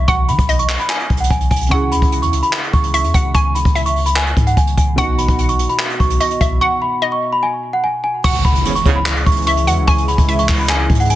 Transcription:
0.08 808-style bass B1, synth pluck F#5, celesta C#6, kick, closed hi-hat
0.29 808-style bass D#3, celesta B5, closed hi-hat
0.39 808-style bass B1, kick, closed hi-hat
0.49 synth pluck D#5, closed hi-hat
0.59 celesta C#6, closed hi-hat
0.69 clap, open hi-hat
0.79 celesta B5, closed hi-hat
0.90 celesta G#5, clap, closed hi-hat
1.00 closed hi-hat
1.10 808-style bass B1, kick, closed hi-hat
1.17 celesta F#5, closed hi-hat
1.24 closed hi-hat
1.30 808-style bass B1, celesta G#5, kick, closed hi-hat
1.40 closed hi-hat
1.51 808-style bass B1, celesta G#5, kick, closed hi-hat
1.56 closed hi-hat
1.61 closed hi-hat
1.66 felt piano C#3, closed hi-hat
1.70 808-style bass C#2, felt piano C#4 E4 G#4, synth pluck F#5, celesta C#6, kick, closed hi-hat
1.92 808-style bass D#2, celesta B5, closed hi-hat
2.02 808-style bass C#2, kick, closed hi-hat
2.12 closed hi-hat
2.22 808-style bass E2, celesta C#6, closed hi-hat
2.32 808-style bass C#2, closed hi-hat
2.43 celesta B5, closed hi-hat
2.53 clap, closed hi-hat
2.63 closed hi-hat
2.73 808-style bass C#2, celesta C#6, kick, closed hi-hat
2.84 closed hi-hat
2.94 synth pluck E5, celesta C#6, closed hi-hat
3.04 808-style bass E2, closed hi-hat
3.14 808-style bass C#2, synth pluck F#5, kick, closed hi-hat
3.35 808-style bass C#2, synth pluck G#5, celesta C#6, kick, closed hi-hat
3.55 celesta B5, closed hi-hat
3.65 808-style bass C#2, kick, closed hi-hat
3.75 synth pluck E5, closed hi-hat
3.86 celesta C#6, closed hi-hat
3.96 open hi-hat
4.06 celesta B5, closed hi-hat
4.16 celesta G#5, clap, closed hi-hat
4.27 closed hi-hat
4.37 808-style bass G#2, kick, closed hi-hat
4.47 celesta F#5, closed hi-hat
4.57 808-style bass C#2, celesta G#5, kick, closed hi-hat
4.67 closed hi-hat
4.77 808-style bass C#2, celesta G#5, kick, closed hi-hat
4.96 808-style bass B1, felt piano B2 B3 D#4, synth pluck F#5, celesta C#6, kick, closed hi-hat
5.01 felt piano F#4
5.18 celesta B5, closed hi-hat
5.28 808-style bass B1, kick, closed hi-hat
5.39 closed hi-hat
5.49 celesta C#6, closed hi-hat
5.59 closed hi-hat
5.69 celesta B5, closed hi-hat
5.79 clap, closed hi-hat
5.90 closed hi-hat
6.00 808-style bass B1, celesta C#6, kick, closed hi-hat
6.10 closed hi-hat
6.20 synth pluck D#5, celesta C#6, closed hi-hat
6.30 closed hi-hat
6.41 808-style bass B1, synth pluck E5, kick, closed hi-hat
6.61 synth pluck F#5, celesta C#6
6.82 celesta B5
7.02 synth pluck D#5
7.12 celesta C#6
7.32 celesta B5
7.43 celesta G#5
7.73 celesta F#5
7.84 celesta G#5
8.04 celesta G#5
8.24 808-style bass C#2, analog synth pad C#3 E3 G#3 E4, synth pluck F#5, celesta C#6, kick, crash, impact
8.35 closed hi-hat
8.45 808-style bass C#2, celesta B5, kick, closed hi-hat
8.55 closed hi-hat
8.65 brass ensemble E2 G#2 C#3, closed hi-hat
8.75 celesta C#6, closed hi-hat
8.86 808-style bass C#2, brass ensemble E2 G#2 C#3, kick, closed hi-hat
8.96 celesta B5
9.06 clap, closed hi-hat
9.16 closed hi-hat
9.26 808-style bass C#2, celesta C#6, kick, closed hi-hat
9.32 closed hi-hat
9.37 closed hi-hat
9.42 closed hi-hat
9.47 synth pluck E5, celesta C#6, closed hi-hat
9.57 closed hi-hat
9.67 808-style bass E2, synth pluck F#5, closed hi-hat
9.78 808-style bass C#2
9.87 808-style bass C#2, synth pluck G#5, celesta C#6, kick, closed hi-hat
9.98 closed hi-hat
10.08 celesta B5, closed hi-hat
10.18 808-style bass C#2, kick, closed hi-hat
10.28 synth pluck E5, closed hi-hat
10.39 celesta C#6, closed hi-hat
10.49 808-style bass C#2, kick, clap, open hi-hat
10.59 celesta B5
10.69 celesta G#5, clap, closed hi-hat
10.79 closed hi-hat
10.90 808-style bass G#2, kick, closed hi-hat
10.95 closed hi-hat
11.00 celesta F#5, closed hi-hat
11.05 closed hi-hat
11.10 celesta G#5, closed hi-hat

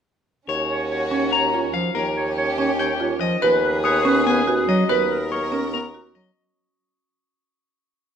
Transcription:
0.48 bassoon D#2, string section C#4 F#4, clean electric guitar C#5, clarinet C#5
0.70 clarinet C#5
0.91 clarinet C#5
1.11 marimba C#4, clarinet C#5
1.32 clarinet C#5, clean electric guitar A#5
1.53 marimba F4, clarinet C#5
1.74 bass clarinet F3, clean electric guitar F5
1.95 bassoon D#2, string section C#4 G4, clean electric guitar A#4, clarinet C#5
2.17 clarinet C#5
2.37 clarinet C#5
2.58 marimba C#4, clarinet C#5
2.79 clarinet C#5, clean electric guitar G5
3.00 marimba F4, clarinet C#5
3.21 bass clarinet F3, clean electric guitar D#5
3.41 bassoon D#2, string section B3 G#4, marimba B4, clarinet B4, clean electric guitar B4
3.63 clarinet B4
3.84 clarinet B4, clean electric guitar C#5, glockenspiel D#6
4.05 marimba C#4, clarinet B4
4.26 bass clarinet B3, clarinet B4, clean electric guitar G#5
4.47 marimba F#4, clarinet B4
4.68 bass clarinet F#3, clean electric guitar D#5
4.89 bassoon D#2, string section B3 A#4, clarinet A#4, clean electric guitar B4, marimba B4
5.11 clarinet A#4
5.32 clarinet A#4, clean electric guitar C#5, glockenspiel C#6
5.52 marimba C#4, clarinet A#4
5.73 bass clarinet B3, clarinet A#4, clean electric guitar A#5
5.94 marimba F#4, clarinet A#4
6.15 bass clarinet F#3, clean electric guitar D#5

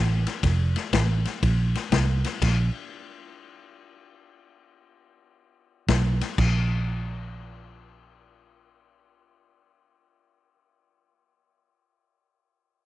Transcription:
Already playing: fingered electric bass A1
0.27 snare, ride
0.43 fingered electric bass F1, kick, snare, ride
0.76 snare, ride
0.93 fingered electric bass A1, kick, snare, ride
1.25 snare, ride
1.43 fingered electric bass A#1, kick, ride
1.75 snare, ride
1.92 fingered electric bass C2, kick, snare, ride
2.24 snare, ride
2.42 fingered electric bass A#1, kick, snare, crash, ride
5.88 fingered electric bass B1, kick, snare, ride
6.21 snare, ride
6.38 fingered electric bass A#1, kick, crash

